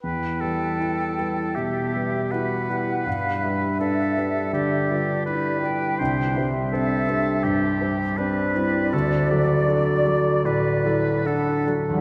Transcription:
<<
  \new Staff \with { instrumentName = "Flute" } { \time 4/4 \key e \minor \tempo 4 = 80 g''2 e''4 fis''4 | f''8 e''4. d''4 d''8 g''8 | g''8 e''2 r8 d''4~ | d''2 d''4 fis''8 r8 | }
  \new Staff \with { instrumentName = "Oboe" } { \time 4/4 \key e \minor b'8 a'4. g'4 b'4~ | b'4 a'4 g'4 b'4 | c''8 r8 a'4 g'4 b'4 | a'8 d''4. b'4 a'8 r8 | }
  \new Staff \with { instrumentName = "Clarinet" } { \time 4/4 \key e \minor e'2 g'8 g'8 fis'8 e'8 | d'2 g'8 f'8 e'4 | d'8 r8 c'8 d'4. d'8 e'8 | fis'2 fis'8 e'8 d'8 r8 | }
  \new Staff \with { instrumentName = "Grand piano" } { \time 4/4 \key e \minor e,8 <g b'>8 <e' b'>8 <g b'>8 b,8 <g b'>8 <e' b'>8 <g b'>8 | g,8 <g b'>8 <d' b'>8 <g b'>8 d8 <g b'>8 <d' b'>8 <g b'>8 | c,8 <g c''>8 <d' c''>8 <g c''>8 g,8 <g c''>8 <c' d'>8 <g c'>8 | d,8 <fis a'>8 <d' a'>8 <fis a'>8 a,8 <fis a'>8 <d' a'>8 <fis a'>8 | }
>>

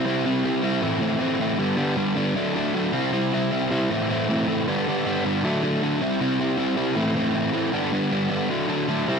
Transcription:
\new Staff \with { instrumentName = "Overdriven electric guitar" } { \clef bass \time 4/4 \key g \major \tempo 4 = 156 <c g c' e'>8 <c g c' e'>8 <c g c' e'>8 <c g c' e'>8 <a, e a c' e'>8 <a, e a c' e'>8 <a, e a c' e'>8 <a, e a c' e'>8 | <g, d g b d'>8 <g, d g b d'>8 <g, d g b d'>8 <g, d g b d'>8 <d fis a d'>8 <d fis a d'>8 <d fis a d'>8 <c g c' e'>8 | <c g c' e'>8 <c g c' e'>8 <c g c' e'>8 <c g c' e'>8 <a, e a c' e'>8 <a, e a c' e'>8 <a, e a c' e'>8 <a, e a c' e'>8 | <g, d g b d'>8 <g, d g b d'>8 <g, d g b d'>8 <g, d g b d'>8 <d fis a d'>8 <d fis a d'>8 <d fis a d'>8 <c g c' e'>8 |
<c g c' e'>8 <c g c' e'>8 <c g c' e'>8 <c g c' e'>8 <a, e a c' e'>8 <a, e a c' e'>8 <a, e a c' e'>8 <a, e a c' e'>8 | <g, d g b d'>8 <g, d g b d'>8 <g, d g b d'>8 <g, d g b d'>8 <d fis a d'>8 <d fis a d'>8 <d fis a d'>8 <c g c' e'>8 | }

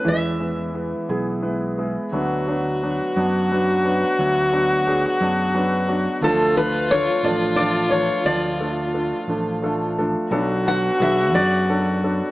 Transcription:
<<
  \new Staff \with { instrumentName = "Steel-string acoustic guitar" } { \time 6/8 \key b \dorian \tempo 4. = 58 e''2~ e''8 r8 | r2. | r2. | a'8 b'8 cis''8 d''8 d''8 cis''8 |
d''4. r4. | r8 fis''8 e''8 d''4. | }
  \new Staff \with { instrumentName = "Violin" } { \time 6/8 \key b \dorian r2. | fis'2.~ | fis'2. | f'2.~ |
f'2~ f'8 r8 | fis'2. | }
  \new Staff \with { instrumentName = "Grand piano" } { \time 6/8 \key b \dorian <gis b e' b'>8 <gis b e' b'>8 <gis b e' b'>4 <gis b e' b'>8 <gis b e' gis'>8 | <fis b d' b'>8 <fis b d' b'>8 <fis b d' b'>4 <fis b d' b'>8 <fis b d' b'>8~ | <fis b d' b'>8 <fis b d' fis'>8 <fis b d' gis'>4 <fis b d' b'>8 <fis b d' fis'>8 | <f a d' a'>8 <f a d' f'>8 <f a d' a'>4 <f a d' f'>8 <f a d' b'>8~ |
<f a d' b'>8 <f a d' a'>8 <f a d' a'>4 <f a d' a' f''>8 <f a d' a' a''>8 | <fis b d' a'>8 <fis b d' b'>8 <fis b d' gis'>4 <fis b d' a'>8 <fis b d' a'>8 | }
  \new Staff \with { instrumentName = "Grand piano" } { \clef bass \time 6/8 \key b \dorian <e, e>2. | <d, d>2. | <d, d>2. | <d, d>2. |
<d, d>2. | <b,, b,>2. | }
  \new Staff \with { instrumentName = "Felt piano" } { \clef bass \time 6/8 \key b \dorian e4. <b e' gis'>8 b4 | fis4. <fis b d'>8 fis4 | fis4. <fis b d'>8 fis4 | f4. <f a d'>8 f4 |
f4. <f a d'>8 f4 | r2. | }
  \new Staff \with { instrumentName = "Fretless electric bass" } { \clef bass \time 6/8 \key b \dorian e,4. b,,4. | d,4. fis,4. | d,4. fis,4. | d,4. a,,4. |
d,4. a,,4. | b,,4 b,,8 fis,4. | }
>>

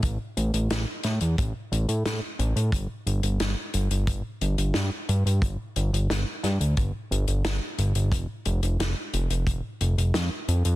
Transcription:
<<
  \new Staff \with { instrumentName = "Analog synth bass" } { \clef bass \time 4/4 \key g \dorian \tempo 4 = 89 a,,16 r16 a,,16 a,,16 a,,16 r16 a,16 e,16 a,,16 r16 a,,16 a,16 a,16 r16 a,,16 a,16 | g,,16 r16 g,,16 g,,16 g,,16 r16 g,,16 g,,16 g,,16 r16 g,,16 g,,16 g,16 r16 g,16 g,16 | g,,16 r16 g,,16 g,,16 g,,16 r16 g,16 d,16 g,,16 r16 g,,16 g,,16 g,,16 r16 g,,16 g,,16 | f,,16 r16 f,,16 f,,16 f,,16 r16 f,,16 f,,16 f,,16 r16 f,,16 f,,16 f,16 r16 f,16 f,16 | }
  \new DrumStaff \with { instrumentName = "Drums" } \drummode { \time 4/4 <hh bd>8 hh16 hh16 <hh sn>8 <hh sn>16 hh16 <hh bd>8 hh16 hh16 <hh sn>8 hh16 hh16 | <hh bd>8 hh16 hh16 <hh sn>8 hh16 hh16 <hh bd>8 hh16 hh16 <hh sn>8 hh16 hh16 | <hh bd>8 hh16 hh16 <hh sn>8 <hh sn>16 hh16 <hh bd>8 hh16 hh16 <hh sn>8 hh16 hh16 | <hh bd>8 hh16 hh16 <hh sn>8 hh16 hh16 <hh bd>8 hh16 hh16 <hh sn>8 hh16 hh16 | }
>>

